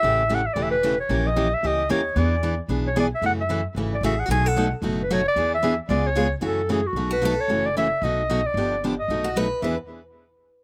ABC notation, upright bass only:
X:1
M:4/4
L:1/8
Q:"Swing" 1/4=226
K:Emix
V:1 name="Upright bass" clef=bass
A,,,4 E,,,4 | ^A,,,4 C,,2 ^D,,2 | E,,4 B,,,4 | F,,4 G,,,2 A,,,2 |
B,,,4 F,,,4 | E,,4 C,,4 | F,,4 B,,,4 | F,,,4 B,,,4 |
=G,,,4 B,,,4 | E,, z6 z |]